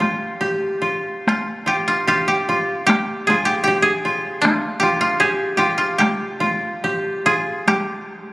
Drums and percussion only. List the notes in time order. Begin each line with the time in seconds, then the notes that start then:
0.02 taiko rim, taiko high
1.28 taiko rim, taiko high
2.89 taiko rim, taiko high
3.29 taiko rim, taiko high
4.45 taiko rim, taiko high
6.01 taiko rim, taiko high
6.43 taiko high
7.68 taiko rim, taiko high